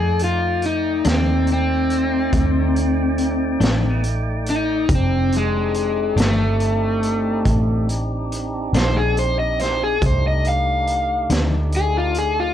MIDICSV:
0, 0, Header, 1, 6, 480
1, 0, Start_track
1, 0, Tempo, 854701
1, 2752, Time_signature, 12, 3, 24, 8
1, 7040, End_track
2, 0, Start_track
2, 0, Title_t, "Overdriven electric guitar"
2, 0, Program_c, 0, 29
2, 0, Note_on_c, 0, 68, 68
2, 116, Note_off_c, 0, 68, 0
2, 134, Note_on_c, 0, 65, 62
2, 356, Note_off_c, 0, 65, 0
2, 369, Note_on_c, 0, 63, 67
2, 593, Note_off_c, 0, 63, 0
2, 609, Note_on_c, 0, 60, 75
2, 834, Note_off_c, 0, 60, 0
2, 857, Note_on_c, 0, 60, 81
2, 2263, Note_off_c, 0, 60, 0
2, 2527, Note_on_c, 0, 63, 88
2, 2753, Note_off_c, 0, 63, 0
2, 2779, Note_on_c, 0, 60, 72
2, 2999, Note_off_c, 0, 60, 0
2, 3015, Note_on_c, 0, 56, 68
2, 3470, Note_off_c, 0, 56, 0
2, 3486, Note_on_c, 0, 57, 79
2, 4416, Note_off_c, 0, 57, 0
2, 4929, Note_on_c, 0, 72, 96
2, 5034, Note_on_c, 0, 68, 79
2, 5037, Note_off_c, 0, 72, 0
2, 5149, Note_off_c, 0, 68, 0
2, 5160, Note_on_c, 0, 72, 76
2, 5272, Note_off_c, 0, 72, 0
2, 5276, Note_on_c, 0, 75, 73
2, 5390, Note_off_c, 0, 75, 0
2, 5399, Note_on_c, 0, 72, 77
2, 5512, Note_off_c, 0, 72, 0
2, 5523, Note_on_c, 0, 68, 76
2, 5633, Note_off_c, 0, 68, 0
2, 5651, Note_on_c, 0, 72, 77
2, 5757, Note_off_c, 0, 72, 0
2, 5770, Note_on_c, 0, 75, 68
2, 5877, Note_off_c, 0, 75, 0
2, 5888, Note_on_c, 0, 77, 74
2, 6345, Note_off_c, 0, 77, 0
2, 6607, Note_on_c, 0, 68, 84
2, 6715, Note_off_c, 0, 68, 0
2, 6724, Note_on_c, 0, 65, 71
2, 6833, Note_off_c, 0, 65, 0
2, 6844, Note_on_c, 0, 68, 77
2, 6953, Note_off_c, 0, 68, 0
2, 6963, Note_on_c, 0, 65, 72
2, 7040, Note_off_c, 0, 65, 0
2, 7040, End_track
3, 0, Start_track
3, 0, Title_t, "Tonewheel organ"
3, 0, Program_c, 1, 16
3, 0, Note_on_c, 1, 57, 60
3, 0, Note_on_c, 1, 63, 63
3, 0, Note_on_c, 1, 74, 62
3, 0, Note_on_c, 1, 79, 64
3, 2730, Note_off_c, 1, 79, 0
3, 2732, Note_off_c, 1, 57, 0
3, 2732, Note_off_c, 1, 63, 0
3, 2733, Note_off_c, 1, 74, 0
3, 2748, Note_on_c, 1, 62, 61
3, 2749, Note_on_c, 1, 60, 64
3, 2749, Note_on_c, 1, 67, 56
3, 2751, Note_on_c, 1, 63, 61
3, 5606, Note_off_c, 1, 62, 0
3, 5607, Note_off_c, 1, 60, 0
3, 5607, Note_off_c, 1, 63, 0
3, 5607, Note_off_c, 1, 67, 0
3, 5624, Note_on_c, 1, 63, 64
3, 5625, Note_on_c, 1, 62, 63
3, 5627, Note_on_c, 1, 67, 63
3, 5628, Note_on_c, 1, 57, 62
3, 7040, Note_off_c, 1, 57, 0
3, 7040, Note_off_c, 1, 62, 0
3, 7040, Note_off_c, 1, 63, 0
3, 7040, Note_off_c, 1, 67, 0
3, 7040, End_track
4, 0, Start_track
4, 0, Title_t, "Clean electric guitar"
4, 0, Program_c, 2, 27
4, 590, Note_on_c, 2, 62, 65
4, 593, Note_on_c, 2, 57, 51
4, 596, Note_on_c, 2, 51, 51
4, 600, Note_on_c, 2, 41, 45
4, 735, Note_off_c, 2, 62, 0
4, 736, Note_off_c, 2, 57, 0
4, 738, Note_off_c, 2, 51, 0
4, 740, Note_off_c, 2, 41, 0
4, 2025, Note_on_c, 2, 62, 71
4, 2027, Note_on_c, 2, 57, 64
4, 2030, Note_on_c, 2, 41, 55
4, 2030, Note_on_c, 2, 51, 56
4, 2173, Note_off_c, 2, 62, 0
4, 2174, Note_off_c, 2, 57, 0
4, 2175, Note_off_c, 2, 41, 0
4, 2175, Note_off_c, 2, 51, 0
4, 3464, Note_on_c, 2, 62, 58
4, 3467, Note_on_c, 2, 57, 59
4, 3471, Note_on_c, 2, 51, 51
4, 3473, Note_on_c, 2, 41, 43
4, 3612, Note_off_c, 2, 62, 0
4, 3614, Note_off_c, 2, 57, 0
4, 3616, Note_off_c, 2, 51, 0
4, 3617, Note_off_c, 2, 41, 0
4, 4912, Note_on_c, 2, 62, 67
4, 4916, Note_on_c, 2, 51, 56
4, 4916, Note_on_c, 2, 57, 62
4, 4921, Note_on_c, 2, 41, 51
4, 5056, Note_off_c, 2, 62, 0
4, 5058, Note_off_c, 2, 51, 0
4, 5058, Note_off_c, 2, 57, 0
4, 5060, Note_off_c, 2, 41, 0
4, 6347, Note_on_c, 2, 62, 58
4, 6349, Note_on_c, 2, 57, 51
4, 6352, Note_on_c, 2, 41, 43
4, 6353, Note_on_c, 2, 51, 55
4, 6492, Note_off_c, 2, 62, 0
4, 6494, Note_off_c, 2, 57, 0
4, 6495, Note_off_c, 2, 41, 0
4, 6495, Note_off_c, 2, 51, 0
4, 7040, End_track
5, 0, Start_track
5, 0, Title_t, "Fingered electric bass"
5, 0, Program_c, 3, 33
5, 0, Note_on_c, 3, 41, 73
5, 570, Note_off_c, 3, 41, 0
5, 593, Note_on_c, 3, 39, 78
5, 1292, Note_off_c, 3, 39, 0
5, 1306, Note_on_c, 3, 38, 76
5, 2008, Note_off_c, 3, 38, 0
5, 2023, Note_on_c, 3, 33, 79
5, 2726, Note_off_c, 3, 33, 0
5, 2748, Note_on_c, 3, 29, 79
5, 3448, Note_off_c, 3, 29, 0
5, 3460, Note_on_c, 3, 31, 84
5, 4164, Note_off_c, 3, 31, 0
5, 4187, Note_on_c, 3, 33, 81
5, 4887, Note_off_c, 3, 33, 0
5, 4902, Note_on_c, 3, 34, 78
5, 5605, Note_off_c, 3, 34, 0
5, 5625, Note_on_c, 3, 36, 77
5, 6325, Note_off_c, 3, 36, 0
5, 6344, Note_on_c, 3, 38, 84
5, 7040, Note_off_c, 3, 38, 0
5, 7040, End_track
6, 0, Start_track
6, 0, Title_t, "Drums"
6, 108, Note_on_c, 9, 42, 51
6, 164, Note_off_c, 9, 42, 0
6, 348, Note_on_c, 9, 42, 47
6, 404, Note_off_c, 9, 42, 0
6, 586, Note_on_c, 9, 42, 72
6, 601, Note_on_c, 9, 38, 97
6, 643, Note_off_c, 9, 42, 0
6, 657, Note_off_c, 9, 38, 0
6, 825, Note_on_c, 9, 42, 55
6, 881, Note_off_c, 9, 42, 0
6, 1067, Note_on_c, 9, 42, 53
6, 1123, Note_off_c, 9, 42, 0
6, 1307, Note_on_c, 9, 42, 71
6, 1308, Note_on_c, 9, 36, 79
6, 1363, Note_off_c, 9, 42, 0
6, 1364, Note_off_c, 9, 36, 0
6, 1550, Note_on_c, 9, 42, 49
6, 1607, Note_off_c, 9, 42, 0
6, 1785, Note_on_c, 9, 42, 54
6, 1841, Note_off_c, 9, 42, 0
6, 2026, Note_on_c, 9, 42, 67
6, 2041, Note_on_c, 9, 38, 94
6, 2083, Note_off_c, 9, 42, 0
6, 2097, Note_off_c, 9, 38, 0
6, 2266, Note_on_c, 9, 42, 51
6, 2322, Note_off_c, 9, 42, 0
6, 2506, Note_on_c, 9, 42, 57
6, 2562, Note_off_c, 9, 42, 0
6, 2745, Note_on_c, 9, 42, 70
6, 2746, Note_on_c, 9, 36, 101
6, 2802, Note_off_c, 9, 36, 0
6, 2802, Note_off_c, 9, 42, 0
6, 2989, Note_on_c, 9, 42, 57
6, 3045, Note_off_c, 9, 42, 0
6, 3225, Note_on_c, 9, 42, 57
6, 3282, Note_off_c, 9, 42, 0
6, 3467, Note_on_c, 9, 42, 86
6, 3482, Note_on_c, 9, 38, 96
6, 3523, Note_off_c, 9, 42, 0
6, 3538, Note_off_c, 9, 38, 0
6, 3706, Note_on_c, 9, 42, 58
6, 3763, Note_off_c, 9, 42, 0
6, 3947, Note_on_c, 9, 42, 54
6, 4003, Note_off_c, 9, 42, 0
6, 4187, Note_on_c, 9, 36, 72
6, 4187, Note_on_c, 9, 42, 71
6, 4243, Note_off_c, 9, 36, 0
6, 4243, Note_off_c, 9, 42, 0
6, 4430, Note_on_c, 9, 42, 53
6, 4487, Note_off_c, 9, 42, 0
6, 4672, Note_on_c, 9, 42, 52
6, 4728, Note_off_c, 9, 42, 0
6, 4909, Note_on_c, 9, 42, 66
6, 4924, Note_on_c, 9, 38, 96
6, 4965, Note_off_c, 9, 42, 0
6, 4980, Note_off_c, 9, 38, 0
6, 5150, Note_on_c, 9, 42, 52
6, 5206, Note_off_c, 9, 42, 0
6, 5388, Note_on_c, 9, 42, 50
6, 5402, Note_on_c, 9, 38, 27
6, 5444, Note_off_c, 9, 42, 0
6, 5459, Note_off_c, 9, 38, 0
6, 5627, Note_on_c, 9, 36, 96
6, 5628, Note_on_c, 9, 42, 70
6, 5683, Note_off_c, 9, 36, 0
6, 5684, Note_off_c, 9, 42, 0
6, 5866, Note_on_c, 9, 42, 50
6, 5922, Note_off_c, 9, 42, 0
6, 6106, Note_on_c, 9, 42, 49
6, 6162, Note_off_c, 9, 42, 0
6, 6345, Note_on_c, 9, 42, 79
6, 6359, Note_on_c, 9, 38, 101
6, 6401, Note_off_c, 9, 42, 0
6, 6415, Note_off_c, 9, 38, 0
6, 6583, Note_on_c, 9, 42, 59
6, 6639, Note_off_c, 9, 42, 0
6, 6820, Note_on_c, 9, 42, 52
6, 6877, Note_off_c, 9, 42, 0
6, 7040, End_track
0, 0, End_of_file